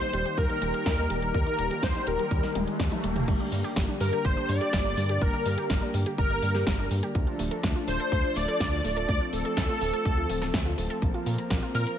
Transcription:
Already playing: D#3 G3 A#3 G4 C5, riser
0.01 D#4, closed hi-hat
0.13 D#1 G3, closed hi-hat
0.25 G4, closed hi-hat
0.37 D#2 G3 A#4, kick, closed hi-hat
0.50 D#4, closed hi-hat
0.62 D#1 G3, closed hi-hat
0.74 G4, closed hi-hat
0.86 D#2 G3, kick, snare, closed hi-hat
0.98 D#4, closed hi-hat
1.10 D#1 G3, closed hi-hat
1.22 G4, closed hi-hat
1.34 D#2 G3 A#4, kick, closed hi-hat
1.46 D#4, closed hi-hat
1.58 D#1 G3, closed hi-hat
1.71 G4, closed hi-hat
1.83 D#2 G3 C5, kick, snare, closed hi-hat
1.95 D#4, closed hi-hat
2.07 D#1 G3 A#4, closed hi-hat
2.19 G4, closed hi-hat
2.31 D#2 G3, kick, closed hi-hat
2.43 D#4, snare, closed hi-hat
2.55 D#1 G3, closed hi-hat, high tom
2.67 G4, closed hi-hat
2.80 D#2 G3, kick, snare, closed hi-hat, mid tom
2.92 D#4, closed hi-hat, mid tom
3.04 D#1 G3, closed hi-hat
3.16 G4, closed hi-hat, mid tom
3.28 G1 D3 G3 A#3 G4, kick, closed hi-hat, crash
3.40 D4, closed hi-hat
3.52 G2 G3, open hi-hat
3.64 G4, closed hi-hat
3.76 G1 G3, kick, snare, closed hi-hat
3.88 D4, closed hi-hat
4.00 G2 G3 A#4, open hi-hat
4.13 G4, closed hi-hat
4.25 G1 G3 C5, kick, closed hi-hat
4.37 D4, closed hi-hat
4.49 G2 G3 D5, open hi-hat
4.61 G4, closed hi-hat
4.73 G1 G3, kick, snare, closed hi-hat
4.85 D4, closed hi-hat
4.97 G2 G3, open hi-hat
5.09 G4, closed hi-hat
5.21 G1 G3 A#4, kick, closed hi-hat
5.34 D4, closed hi-hat
5.46 G2 G3, open hi-hat
5.58 G4, closed hi-hat
5.70 G1 G3, kick, snare, closed hi-hat
5.82 D4, closed hi-hat
5.94 G2 G3, open hi-hat
6.06 G4, closed hi-hat
6.18 G1 G3 A#4, kick, closed hi-hat
6.30 D4, closed hi-hat
6.42 G2 G3, open hi-hat
6.55 G4, snare, open hi-hat
6.67 G1 G3, kick, snare, closed hi-hat
6.79 D4, closed hi-hat
6.91 G2 G3, open hi-hat
7.03 G4, closed hi-hat
7.15 D2 F3 A3 D4 A4, kick, closed hi-hat
7.27 F4, closed hi-hat
7.39 D1 A3, open hi-hat
7.51 A4, closed hi-hat
7.63 D2 A3, kick, snare, closed hi-hat
7.76 F4, closed hi-hat
7.88 D1 A3 C5, open hi-hat
8.00 A4, closed hi-hat
8.12 D2 A3, kick, closed hi-hat
8.24 F4, closed hi-hat
8.36 D1 A3 D5, open hi-hat
8.48 A4, closed hi-hat
8.60 D2 A3, kick, snare, closed hi-hat
8.72 F4, closed hi-hat
8.84 D1 A3, open hi-hat
8.97 A4, closed hi-hat
9.09 D2 A3 C4 D5, kick, closed hi-hat
9.21 F4, closed hi-hat
9.33 D1 A3 A4, open hi-hat
9.45 A4, closed hi-hat
9.57 D2 A3, kick, snare, closed hi-hat
9.69 F4, closed hi-hat
9.81 D1 A3, open hi-hat
9.93 A4, closed hi-hat
10.05 D2 A3, kick, closed hi-hat
10.17 F4, closed hi-hat
10.29 D1 A3, open hi-hat
10.42 A4, snare, open hi-hat
10.54 D2 A3, kick, snare, closed hi-hat
10.66 F4, closed hi-hat
10.78 D1 A3, open hi-hat
10.90 A4, closed hi-hat
11.02 A#1 A#3 A#4, kick, closed hi-hat
11.14 F4, closed hi-hat
11.26 A#2 A#3, open hi-hat
11.38 A#5, closed hi-hat
11.50 A#1 A#3, kick, snare, closed hi-hat
11.63 F4, closed hi-hat
11.75 A#2 A#3 A#4, open hi-hat
11.87 A#5, closed hi-hat

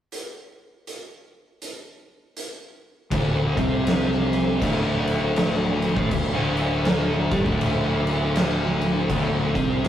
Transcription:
0.12 closed hi-hat
0.87 closed hi-hat
1.62 closed hi-hat
2.37 closed hi-hat
3.11 D1 D2 D3, kick, crash
3.56 C2 C3 C4, kick, crash
3.87 snare, crash
4.12 snare
4.33 crash
4.61 D1 D2 D3, kick, crash
5.07 crash
5.36 snare, crash
5.82 crash
5.95 A1 A2 A3, kick
6.11 D1 D2, kick, crash
6.34 D1 D2 D3
6.57 crash
6.85 snare, crash
7.31 G1 G2 G3, kick, crash
7.45 D1 D2 D3, kick
7.61 crash
8.07 crash
8.36 snare, crash
8.81 crash
9.09 D1 D2 D3, kick, crash
9.54 C2 C3 C4, kick, crash
9.84 crash

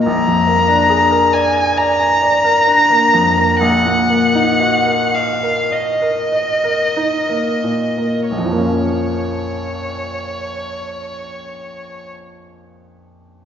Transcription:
0.06 A#1 A#5
0.27 F2
0.47 A#3
0.68 D4
0.89 G#4
1.11 A#4
1.33 D5 G#5
1.54 G#5
1.76 D5 A#5
2.00 G#5
2.22 D5
2.44 A#4
2.67 D4
2.90 A#3
3.13 F2
3.37 A#3
3.61 A#1 F#5
3.85 A#2
4.09 A#3
4.35 D#4
4.60 F#4
4.86 A#4
5.14 D#5 F5
5.43 A#4
5.71 D#5
6.01 A#4
6.32 D#5
6.64 A#4
6.96 D#4
7.29 A#3
7.63 A#2
7.97 A#3
8.30 A#1 C#5
8.38 F2
8.45 F3
8.51 A#3
8.58 C#4
8.64 F4

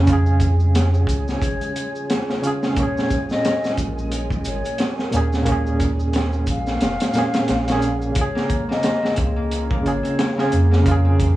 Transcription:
Already playing: F2 C#3 G#3 C#4 F4 G#4 C#5 G#5
0.03 C#3 C#4, closed hi-hat, maracas
0.08 F4, kick
0.13 G#4
0.26 maracas
0.40 kick, closed hi-hat, maracas
0.60 maracas
0.75 snare, closed hi-hat, maracas
0.94 maracas
1.07 C#2 C#5, kick, closed hi-hat, maracas
1.28 snare, maracas
1.42 G#1, kick, closed hi-hat, maracas
1.61 closed hi-hat, maracas
1.76 closed hi-hat, maracas
1.95 maracas
2.10 snare, closed hi-hat, maracas
2.30 snare
2.42 C#3 C#4 F4, closed hi-hat, maracas
2.47 G#4
2.63 snare, maracas
2.74 A#2 A#3 A#4, kick, closed hi-hat, maracas
2.78 C#4 C#5
2.83 G#4
2.97 snare, maracas
3.11 kick, closed hi-hat, maracas
3.30 D#5, snare, maracas
3.44 snare, closed hi-hat, maracas
3.64 snare, maracas
3.77 A#1, kick, closed hi-hat, maracas
3.98 maracas
4.12 closed hi-hat, maracas
4.31 kick, maracas
4.45 G#1 C#5, closed hi-hat, maracas
4.65 closed hi-hat, maracas
4.78 snare, closed hi-hat, maracas
4.99 snare
5.12 D#2 A#2 A#3 C#4, closed hi-hat, maracas
5.17 G#4
5.32 snare, maracas
5.43 A#2 A#3, closed hi-hat, maracas
5.47 C#4, kick
5.52 G#4
5.66 maracas
5.80 kick, closed hi-hat, maracas
5.99 maracas
6.13 snare, closed hi-hat, maracas
6.33 maracas
6.47 A#1 F5, kick, closed hi-hat, maracas
6.67 snare, maracas
6.81 F1, snare, closed hi-hat, maracas
7.00 snare, closed hi-hat, maracas
7.14 A#2 A#3 C#4, snare, closed hi-hat, maracas
7.18 G#4
7.34 snare, closed hi-hat, maracas
7.48 A#1, snare, closed hi-hat, maracas
7.67 A#2 A#3 C#4, snare, closed hi-hat, maracas
7.72 G#4
7.82 closed hi-hat, maracas
8.02 maracas
8.12 C#3 C#4 F4 G#4 C#5 F5 C6, closed hi-hat
8.16 F4 C#5, kick
8.21 G#4
8.35 A#3, snare
8.50 kick, closed hi-hat
8.69 A#3 D#5, snare
8.83 snare, closed hi-hat
9.03 C4, snare
9.16 C#2, kick, closed hi-hat
9.36 A#3
9.52 closed hi-hat
9.70 A#3, kick
9.83 G#1 C#3 F4 C#5, closed hi-hat
9.88 G#4
10.03 C4, closed hi-hat
10.19 snare, closed hi-hat
10.36 C#3 A#3 F4, snare
10.41 G#4
10.52 F2, closed hi-hat
10.71 A#3, snare
10.82 C#3 C#5
10.86 F4, kick, closed hi-hat
10.91 G#4
11.05 C4
11.20 kick, closed hi-hat

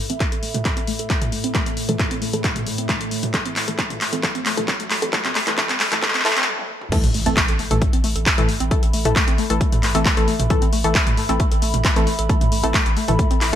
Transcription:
Already playing: A2 A4 E5 B5, riser
0.10 E3 A3 C4 A4, closed hi-hat
0.20 A3, kick, clap, closed hi-hat
0.32 A4, closed hi-hat
0.43 A3, open hi-hat
0.54 E3 A3 A4, closed hi-hat, mid tom
0.65 A3, kick, clap, closed hi-hat
0.77 C4, closed hi-hat
0.87 A3, open hi-hat
0.99 A4, closed hi-hat
1.10 A3, kick, clap, closed hi-hat
1.22 E3 A3 A4, closed hi-hat, mid tom
1.32 A3, open hi-hat
1.44 C4, closed hi-hat
1.55 E3 A3 A4, kick, clap, closed hi-hat
1.66 A4, closed hi-hat
1.77 A3, open hi-hat
1.89 E3 A3 A4, closed hi-hat, mid tom
1.99 A3, kick, clap, closed hi-hat
2.11 C4, closed hi-hat
2.22 A3, open hi-hat
2.33 E3 A3 A4, closed hi-hat
2.44 A3, kick, clap, closed hi-hat
2.56 A3, closed hi-hat, mid tom
2.67 A3, open hi-hat
2.78 C4, closed hi-hat
2.89 A3, kick, clap, closed hi-hat
3.01 A4, closed hi-hat
3.11 A3, open hi-hat
3.23 A3, closed hi-hat, mid tom
3.34 E3 A3 A4, kick, clap, closed hi-hat
3.46 C4, closed hi-hat
3.56 A3, clap, open hi-hat
3.68 E3 A3 A4, closed hi-hat
3.79 A3, kick, clap, closed hi-hat
3.90 A3, closed hi-hat, mid tom
4.01 A3, clap, open hi-hat
4.13 E3 A3 C4 A4, closed hi-hat
4.23 E3 A3 A4, kick, clap, closed hi-hat
4.35 C4, closed hi-hat
4.46 A3, clap, open hi-hat
4.57 E3 A3 A4, closed hi-hat, mid tom
4.68 A3, kick, clap, closed hi-hat
4.80 A3, closed hi-hat
4.91 A3, clap, open hi-hat
5.02 E3 A3 C4 A4, closed hi-hat
5.13 E3 A3 A4, kick, clap, closed hi-hat
5.25 C4, clap, closed hi-hat, mid tom
5.35 A3, clap, open hi-hat
5.47 E3 A3 A4, clap, closed hi-hat
5.58 E3 A3 A4, kick, clap, closed hi-hat
5.69 C4, clap, closed hi-hat
5.80 A3, clap, open hi-hat
5.92 E3 A3 A4, clap, closed hi-hat, mid tom
6.02 E3 A3 A4, kick, clap, closed hi-hat
6.08 clap
6.14 C4, clap, closed hi-hat
6.20 clap
6.25 E3 A3 A4, clap, open hi-hat
6.31 clap
6.37 C4, clap, closed hi-hat
6.42 clap
6.47 high tom
6.59 high tom
6.81 mid tom
6.92 E3 A3 A4, kick, closed hi-hat, crash, impact
7.04 A1 A3, closed hi-hat, mid tom
7.14 A1 A3, open hi-hat
7.26 A1 E3 A3 C4 A4, closed hi-hat
7.37 A3, kick, clap, closed hi-hat
7.48 A1 A4, closed hi-hat
7.59 A3, open hi-hat
7.64 E5
7.71 A1 E3 A3 A4, closed hi-hat, mid tom
7.82 A3 B5, kick, closed hi-hat
7.93 A1 C4, closed hi-hat
8.04 A1 A3, open hi-hat
8.16 A1 A4, closed hi-hat
8.26 A3, kick, clap, closed hi-hat
8.38 A1 E3 A3 A4, closed hi-hat, mid tom
8.49 A3, open hi-hat
8.60 A1 C4, closed hi-hat
8.71 E3 A3 A4, kick, closed hi-hat
8.83 A1 A4, closed hi-hat
8.93 A1 A3, open hi-hat
9.05 A1 E3 A3 A4, closed hi-hat, mid tom
9.16 A3, kick, clap, closed hi-hat
9.28 A1 C4, closed hi-hat
9.38 A3, open hi-hat
9.50 A1 E3 A3 A4, closed hi-hat
9.61 A3, kick, closed hi-hat
9.72 A1 A3, closed hi-hat, mid tom
9.83 A1 A3, clap, open hi-hat
9.95 A1 E3 A3 C4 A4, closed hi-hat
10.05 A3, kick, clap, closed hi-hat
10.17 A1 E3 A3 A4, closed hi-hat
10.28 A3, open hi-hat
10.40 A1 A3, closed hi-hat, mid tom
10.50 E3 A3 A4, kick, closed hi-hat
10.62 A1 C4, closed hi-hat
10.73 A1 A3, open hi-hat
10.84 A1 E3 A3 A4, closed hi-hat
10.95 A3, kick, clap, closed hi-hat
11.07 A1 A3, closed hi-hat, mid tom
11.17 A3, open hi-hat
11.29 A1 E3 A3 C4 A4, closed hi-hat
11.40 A3, kick, closed hi-hat
11.52 A1 A4, closed hi-hat
11.62 A1 A3, open hi-hat
11.74 A1 A3, closed hi-hat, mid tom
11.85 A3, kick, clap, closed hi-hat
11.96 A1 E3 A3 C4 A4, closed hi-hat
12.07 A3, open hi-hat
12.19 A1 A4, closed hi-hat
12.29 E3 A3 A4, kick, closed hi-hat
12.41 A1 A3, closed hi-hat, mid tom
12.52 A1 A3, open hi-hat
12.63 A1 E3 A3 C4 A4, closed hi-hat
12.74 A3, kick, clap, closed hi-hat
12.86 A1 A4, closed hi-hat
12.97 A3, open hi-hat
13.08 A1 E3 A3 A4, closed hi-hat, mid tom
13.19 A3, kick, closed hi-hat
13.31 A1 C4, closed hi-hat
13.41 A1 E4, clap, open hi-hat

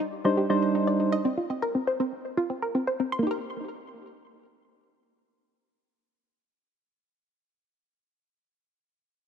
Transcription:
0.00 D#4
0.25 G3 D4 D#4 C5
0.37 G4
0.50 G3 D4 D#4 C5
0.62 C5
0.75 D#4
0.87 D5
1.00 D#4
1.12 D#5
1.25 C4
1.37 F4
1.50 C4
1.62 A#4
1.75 C4
1.87 C5
2.00 C4
2.37 F4
2.50 C4
2.62 A#4
2.75 C4
2.87 C5
3.00 C4
3.12 C6
3.19 A#3
3.23 D#4 G4
3.31 A#4

